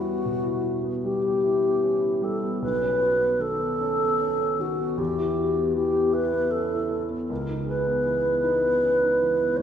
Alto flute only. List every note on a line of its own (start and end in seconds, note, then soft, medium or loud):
0.00 0.78 F#4 medium
1.04 2.25 G4 medium
2.23 2.61 A4 medium
2.61 3.42 B4 medium
3.40 4.62 A4 medium
4.60 4.99 F#4 medium
4.98 5.75 G4 medium
5.75 6.15 G4 medium
6.13 6.52 B4 medium
6.50 7.03 A4 medium
7.29 7.64 A#4 medium
7.68 9.58 B4 medium
9.56 9.62 C#5 medium